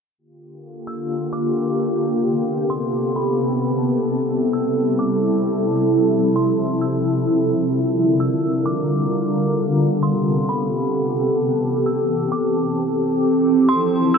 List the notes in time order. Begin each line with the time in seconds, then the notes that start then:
0.18 D3 A#3 F4 G4
0.87 E6
1.33 D6
2.01 C3 B3 A4
2.70 C6
3.16 B5
3.84 C3 G3 E4
4.53 E6
4.99 D6
5.68 C3 F3
6.36 C6
6.81 E6
7.51 D3 G3 F4 A#4
8.20 E6
8.66 D6
9.34 C3 B3 G4 A4
10.03 C6
10.49 B5
11.17 E3 C4
11.86 E6
12.32 D6
13.01 F3 E4
13.69 C6
14.14 E6